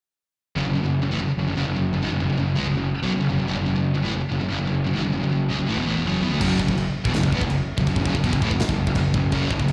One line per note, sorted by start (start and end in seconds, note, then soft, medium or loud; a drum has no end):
0.56 0.64 F#1 medium
0.56 0.65 F#2 medium
0.56 0.65 C#3 medium
0.65 0.74 F#1 medium
0.65 0.74 F#2 soft
0.65 0.74 C#3 medium
0.74 0.83 F#1 medium
0.74 0.84 F#2 medium
0.74 0.85 C#3 medium
0.83 1.01 F#1 medium
0.83 0.99 F#2 medium
0.83 1.00 C#3 medium
1.02 1.10 F#1 medium
1.02 1.11 F#2 soft
1.02 1.11 C#3 medium
1.10 1.19 A1 medium
1.10 1.20 A2 medium
1.10 1.20 E3 medium
1.19 1.28 F#1 medium
1.19 1.29 F#2 medium
1.19 1.30 C#3 medium
1.29 muted picked electric bass stroke soft
1.29 muted distorted electric guitar stroke medium
1.37 1.47 F#1 medium
1.37 1.47 F#2 medium
1.37 1.47 C#3 medium
1.48 1.56 F#1 medium
1.48 1.55 F#2 medium
1.48 1.56 C#3 medium
1.56 1.65 F#1 medium
1.56 1.65 F#2 medium
1.56 1.66 C#3 medium
1.66 1.75 F#1 medium
1.66 1.75 F#2 medium
1.66 1.75 C#3 medium
1.76 1.93 F#1 medium
1.76 1.91 F#2 medium
1.76 1.91 C#3 medium
1.93 2.02 F#1 medium
1.93 2.02 F#2 medium
1.93 2.02 C#3 medium
2.02 2.11 G#1 medium
2.02 2.11 G#2 medium
2.02 2.11 D#3 medium
2.11 2.20 F#1 medium
2.11 2.18 F#2 medium
2.11 2.19 C#3 medium
2.20 2.30 F#1 medium
2.20 2.28 F#2 medium
2.20 2.29 C#3 medium
2.29 2.39 F#1 medium
2.29 2.36 F#2 medium
2.29 2.37 C#3 medium
2.38 2.57 F#1 medium
2.38 2.53 F#2 medium
2.38 2.53 C#3 soft
2.55 2.67 C#2 medium
2.55 2.65 C#3 medium
2.55 2.66 G#3 medium
2.66 2.76 F#1 medium
2.66 2.74 F#2 medium
2.66 2.75 C#3 medium
2.75 2.93 F#1 medium
2.75 2.90 F#2 medium
2.75 2.91 C#3 medium
3.02 3.12 B1 medium
3.02 3.11 B2 medium
3.02 3.12 F#3 medium
3.12 3.21 F#1 medium
3.12 3.19 F#2 medium
3.12 3.20 C#3 medium
3.21 3.30 F#1 medium
3.21 3.28 F#2 medium
3.21 3.29 C#3 medium
3.29 3.39 F#1 medium
3.29 3.38 F#2 medium
3.29 3.38 C#3 medium
3.39 3.49 F#1 medium
3.39 3.46 F#2 medium
3.39 3.47 C#3 medium
3.48 3.58 F#1 medium
3.48 3.56 F#2 medium
3.48 3.56 C#3 medium
3.57 3.67 F#1 medium
3.57 3.65 F#2 medium
3.57 3.65 C#3 medium
3.66 3.76 F#1 medium
3.66 3.74 F#2 medium
3.66 3.75 C#3 medium
3.76 3.94 F#1 medium
3.76 3.91 F#2 medium
3.76 3.91 C#3 medium
3.95 4.04 F#1 medium
3.95 4.04 F#2 medium
3.95 4.04 C#3 medium
4.04 4.13 A1 medium
4.04 4.13 A2 medium
4.04 4.13 E3 medium
4.13 4.22 F#1 medium
4.13 4.21 F#2 medium
4.13 4.23 C#3 medium
4.22 muted distorted electric guitar stroke medium
4.22 muted picked electric bass stroke soft
4.31 4.40 F#1 medium
4.31 4.40 F#2 medium
4.31 4.40 C#3 medium
4.41 4.50 F#1 medium
4.41 4.49 F#2 medium
4.41 4.50 C#3 medium
4.51 4.59 F#1 medium
4.51 4.58 F#2 medium
4.51 4.58 C#3 medium
4.59 4.68 F#1 medium
4.59 4.66 F#2 medium
4.59 4.66 C#3 medium
4.67 4.86 F#1 medium
4.67 4.82 F#2 soft
4.67 4.83 C#3 medium
4.87 4.95 F#1 medium
4.87 4.95 F#2 medium
4.87 4.96 C#3 medium
4.95 5.05 G#1 medium
4.95 5.04 G#2 medium
4.95 5.04 D#3 loud
5.04 5.14 F#1 medium
5.04 5.12 F#2 medium
5.04 5.12 C#3 medium
5.13 5.23 F#1 medium
5.13 5.22 F#2 medium
5.13 5.22 C#3 medium
5.23 5.30 F#1 medium
5.23 5.31 F#2 medium
5.23 5.31 C#3 medium
5.31 5.49 F#1 medium
5.31 5.47 F#2 soft
5.31 5.47 C#3 medium
5.50 5.58 C#2 medium
5.50 5.59 C#3 medium
5.50 5.59 G#3 loud
5.59 5.68 F#1 medium
5.59 5.69 F#2 medium
5.59 5.68 C#3 medium
5.68 5.76 A1 medium
5.68 5.77 A2 medium
5.68 5.77 E3 loud
5.77 5.85 E1 medium
5.77 5.86 E2 medium
5.77 5.87 B2 medium
5.86 5.93 A1 medium
5.86 5.96 A2 medium
5.86 5.96 E3 medium
5.94 6.03 E1 medium
5.94 6.04 E2 medium
5.94 6.05 B2 medium
6.04 6.21 F#1 medium
6.04 6.23 F#2 medium
6.04 6.23 C#3 medium
6.04 6.24 F#3 loud
6.21 6.30 E2 medium
6.21 6.32 E3 medium
6.21 6.32 B3 medium
6.30 6.40 D2 medium
6.30 6.41 D3 medium
6.30 6.42 A3 medium
6.41 6.58 F#1 medium
6.41 6.59 F#2 medium
6.41 6.60 C#3 medium
6.41 6.60 F#3 loud
6.41 kick medium
6.41 crash loud
6.41 china soft
6.59 6.68 F#1 medium
6.59 6.69 F#2 medium
6.59 6.70 C#3 medium
6.59 kick loud
6.68 6.86 F#1 medium
6.68 6.85 F#2 medium
6.68 6.85 C#3 medium
6.68 kick medium
6.78 china medium
7.05 7.14 E1 medium
7.05 7.15 E2 loud
7.05 7.14 B2 medium
7.05 kick loud
7.09 7.16 B2 medium
7.14 7.23 F#1 medium
7.14 7.25 F#2 medium
7.14 7.24 C#3 medium
7.14 snare loud
7.14 china medium
7.23 7.32 F#1 medium
7.23 7.34 F#2 medium
7.23 7.34 C#3 medium
7.23 kick medium
7.32 7.41 E2 medium
7.32 7.43 E3 loud
7.32 7.43 B3 loud
7.32 kick medium
7.41 7.59 F#1 medium
7.41 7.58 F#2 medium
7.41 kick medium
7.46 7.58 C#3 medium
7.50 china medium
7.78 7.86 F#1 medium
7.78 7.89 F#2 medium
7.78 7.89 C#3 medium
7.78 kick loud
7.86 7.96 F#1 medium
7.86 kick medium
7.86 china soft
7.91 7.98 F#2 medium
7.91 7.98 C#3 medium
7.96 8.05 F#1 medium
7.96 8.07 F#2 medium
7.96 8.07 C#3 medium
7.96 kick medium
8.04 8.14 F#1 medium
8.04 8.13 F#2 loud
8.04 8.14 C#3 loud
8.04 kick medium
8.09 8.16 F#2 loud
8.09 8.16 C#3 loud
8.15 8.23 F#1 medium
8.15 8.24 F#2 medium
8.15 8.25 C#3 medium
8.15 kick medium
8.24 8.33 E1 medium
8.24 8.33 E2 medium
8.24 8.33 B2 medium
8.24 kick medium
8.24 china medium
8.33 8.41 F#1 medium
8.33 8.43 F#2 medium
8.33 8.43 C#3 medium
8.33 kick medium
8.42 8.50 A1 loud
8.42 8.52 A2 medium
8.42 8.52 E3 loud
8.42 kick medium
8.51 8.60 F#1 medium
8.51 8.61 F#2 medium
8.51 8.62 C#3 medium
8.51 kick medium
8.60 8.68 F#1 medium
8.60 8.68 F#2 medium
8.60 8.68 C#3 medium
8.60 snare loud
8.60 china medium
8.69 8.86 F#1 medium
8.69 8.84 F#2 medium
8.69 8.84 C#3 medium
8.69 kick medium
8.87 8.95 F#1 medium
8.87 8.97 F#2 medium
8.87 8.97 C#3 medium
8.87 kick medium
8.95 9.13 F#1 medium
8.95 9.12 F#2 medium
8.95 9.12 C#3 medium
8.95 kick medium
8.95 china medium
9.14 9.32 F#1 medium
9.14 9.30 F#2 medium
9.14 9.31 C#3 medium
9.14 kick medium
9.32 9.50 F#1 medium
9.32 9.51 F#2 medium
9.32 9.52 C#3 medium
9.32 9.52 F#3 loud
9.32 kick medium
9.32 china soft
9.51 9.59 F#1 medium
9.51 9.60 F#2 medium
9.51 9.61 C#3 medium
9.51 kick medium
9.60 9.72 F#1 medium
9.60 9.72 F#2 medium
9.60 9.72 C#3 medium
9.60 kick medium
9.68 china medium